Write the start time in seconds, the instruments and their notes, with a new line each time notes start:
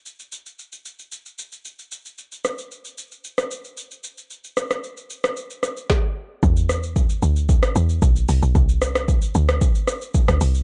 0.06 shaker
0.20 shaker
0.32 shaker
0.46 shaker
0.59 shaker
0.72 shaker
0.85 shaker
0.99 shaker
1.12 shaker
1.26 shaker
1.39 shaker
1.52 shaker
1.65 shaker
1.79 shaker
1.92 shaker
2.05 shaker
2.18 shaker
2.32 shaker
2.45 cross-stick, shaker
2.58 shaker
2.71 shaker
2.85 shaker
2.98 shaker
3.12 shaker
3.24 shaker
3.38 cross-stick, shaker
3.51 shaker
3.64 shaker
3.77 shaker
3.91 shaker
4.04 shaker
4.18 shaker
4.30 shaker
4.44 shaker
4.57 cross-stick, shaker
4.71 cross-stick, shaker
4.84 shaker
4.97 shaker
5.10 shaker
5.24 cross-stick, shaker
5.37 shaker
5.50 shaker
5.63 cross-stick, shaker
5.77 shaker
5.90 kick, snare
6.43 log drum bass E2, kick, shaker
6.57 shaker
6.69 cross-stick, shaker
6.83 shaker
6.96 kick, shaker
7.09 shaker
7.22 log drum bass D2, shaker
7.36 shaker
7.49 kick, shaker
7.63 cross-stick, shaker
7.76 log drum bass E2, shaker
7.89 shaker
8.02 log drum bass B1, kick, shaker
8.16 shaker
8.29 log drum bass C2, open hi-hat, shaker
8.42 log drum bass B1, shaker
8.55 log drum bass C2, kick, shaker
8.69 shaker
8.82 cross-stick, shaker
8.95 cross-stick, shaker
9.08 kick, shaker
9.22 shaker
9.35 log drum bass D2, shaker
9.49 cross-stick, shaker
9.61 kick, shaker
9.75 shaker
9.87 cross-stick, shaker
10.02 shaker
10.14 kick, shaker
10.28 log drum bass D2, cross-stick, shaker
10.41 log drum bass C2, open hi-hat, shaker
10.55 shaker